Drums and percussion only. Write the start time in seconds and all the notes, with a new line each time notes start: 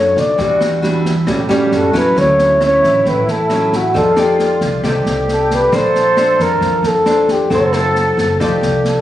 0.16 kick, snare
0.39 kick, snare
0.61 cross-stick, snare
0.83 snare
1.05 kick, snare
1.27 kick, cross-stick, snare
1.50 snare
1.72 snare
1.94 kick, snare
2.17 kick, cross-stick, snare
2.39 snare
2.61 cross-stick, snare
2.83 kick, snare
3.06 kick, snare
3.28 snare
3.50 cross-stick, snare
3.72 kick, snare
3.95 kick, snare
4.17 cross-stick, snare
4.39 snare
4.61 kick, snare
4.84 kick, cross-stick, snare
5.06 snare
5.28 snare
5.50 kick, snare
5.72 kick, cross-stick, snare
5.95 snare
6.17 cross-stick, snare
6.39 kick, snare
6.61 kick, snare
6.84 snare
7.06 cross-stick, snare
7.28 kick, snare
7.50 kick, snare
7.73 cross-stick, snare
7.95 snare
8.17 kick, snare
8.40 kick, cross-stick, snare
8.62 snare
8.85 snare